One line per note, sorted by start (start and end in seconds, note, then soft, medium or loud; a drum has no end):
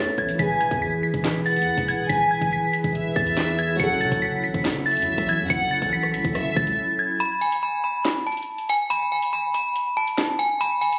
0.00 0.36 A3 medium
0.00 0.38 A3 medium
0.00 0.35 B3 medium
0.00 0.36 C#4 medium
0.00 0.39 A4 soft
0.00 0.40 B4 soft
0.00 0.40 C#5 medium
0.00 0.15 A6 medium
0.18 0.38 A1 loud
0.18 0.37 G#6 medium
0.18 kick loud
0.18 closed hi-hat soft
0.29 closed hi-hat medium
0.35 3.74 E3 medium
0.35 3.75 E4 medium
0.39 0.70 E1 loud
0.39 3.76 E3 medium
0.39 7.16 E4 medium
0.39 3.76 G#4 medium
0.39 3.76 B4 medium
0.39 3.77 B4 medium
0.39 0.79 G#5 medium
0.39 0.58 B6 loud
0.39 kick loud
0.39 closed hi-hat medium
0.60 0.80 G#6 medium
0.60 closed hi-hat medium
0.71 0.92 E2 loud
0.71 kick medium
0.71 closed hi-hat medium
0.82 1.01 B6 medium
1.03 1.22 B6 medium
1.14 1.58 E1 loud
1.14 kick loud
1.24 snare loud
1.24 clap loud
1.24 closed hi-hat medium
1.46 2.06 F#5 medium
1.46 1.86 A6 medium
1.46 closed hi-hat soft
1.51 closed hi-hat medium
1.56 1.77 E2 loud
1.56 closed hi-hat medium
1.62 closed hi-hat medium
1.78 2.08 E1 loud
1.78 kick medium
1.78 closed hi-hat medium
1.88 2.08 G#6 medium
1.88 closed hi-hat medium
2.09 2.40 E1 loud
2.09 2.49 G#5 loud
2.09 2.29 B6 loud
2.09 kick loud
2.09 closed hi-hat medium
2.31 2.50 G#6 medium
2.42 2.62 E1 loud
2.42 kick loud
2.42 closed hi-hat medium
2.53 2.72 B6 medium
2.73 2.92 B6 medium
2.73 closed hi-hat medium
2.84 3.15 E1 loud
2.84 kick loud
2.95 3.76 E5 loud
2.95 closed hi-hat medium
3.16 3.77 E2 loud
3.16 3.56 A6 medium
3.16 kick loud
3.27 closed hi-hat medium
3.37 snare loud
3.37 clap loud
3.59 3.78 G#6 medium
3.59 closed hi-hat medium
3.76 4.02 F#1 loud
3.76 7.14 F#3 medium
3.76 7.17 F#3 medium
3.76 7.16 C#4 medium
3.76 7.17 C#4 medium
3.76 7.17 A4 medium
3.76 4.20 F#5 loud
3.76 3.99 C#7 loud
3.76 kick loud
3.76 closed hi-hat medium
3.81 7.17 E4 medium
3.81 7.18 A4 medium
4.01 4.11 C#3 loud
4.01 4.20 A6 medium
4.01 closed hi-hat medium
4.12 4.45 F#1 loud
4.12 kick medium
4.12 closed hi-hat medium
4.22 4.41 B6 medium
4.44 4.54 A1 loud
4.44 4.63 B6 medium
4.54 4.98 F#1 loud
4.54 kick loud
4.65 snare loud
4.65 clap medium
4.65 closed hi-hat medium
4.86 5.46 E5 medium
4.86 5.26 A6 medium
4.86 closed hi-hat soft
4.91 closed hi-hat medium
4.97 5.09 F#2 loud
4.97 closed hi-hat medium
5.02 closed hi-hat medium
5.07 5.18 F#1 loud
5.18 5.41 A1 loud
5.18 kick medium
5.18 closed hi-hat medium
5.29 5.48 G#6 medium
5.29 closed hi-hat medium
5.39 5.49 F#2 loud
5.49 5.81 F#1 loud
5.49 5.90 F#5 loud
5.49 5.69 C#7 loud
5.49 kick loud
5.49 closed hi-hat medium
5.71 5.90 A6 medium
5.82 6.15 A1 loud
5.82 kick medium
5.82 closed hi-hat medium
5.93 6.12 B6 medium
6.03 cross-stick medium
6.14 6.24 C#2 loud
6.14 6.33 B6 medium
6.14 closed hi-hat medium
6.25 6.47 F#1 loud
6.25 kick loud
6.35 6.75 E5 medium
6.35 cross-stick loud
6.35 closed hi-hat medium
6.46 6.56 G#1 loud
6.56 6.77 C#2 loud
6.56 6.96 A6 medium
6.56 kick loud
6.67 closed hi-hat medium
6.99 7.18 G#6 medium
7.20 7.39 B5 loud
7.20 closed hi-hat medium
7.41 7.61 G#5 medium
7.41 closed hi-hat medium
7.52 closed hi-hat medium
7.63 7.82 B5 medium
7.84 8.03 B5 medium
8.05 snare loud
8.05 clap medium
8.05 closed hi-hat medium
8.27 8.67 A5 medium
8.27 closed hi-hat soft
8.32 closed hi-hat medium
8.37 closed hi-hat medium
8.42 closed hi-hat medium
8.58 closed hi-hat medium
8.69 8.88 G#5 medium
8.69 closed hi-hat medium
8.90 9.09 B5 loud
8.90 closed hi-hat medium
9.12 9.31 G#5 medium
9.22 closed hi-hat medium
9.33 9.52 B5 medium
9.54 9.73 B5 medium
9.54 closed hi-hat medium
9.76 closed hi-hat medium
9.97 10.37 A5 medium
10.07 closed hi-hat medium
10.18 snare loud
10.18 clap medium
10.39 10.58 G#5 medium
10.39 closed hi-hat medium
10.61 10.80 B5 loud
10.61 closed hi-hat medium
10.81 10.99 G#5 medium
10.81 closed hi-hat medium
10.93 closed hi-hat medium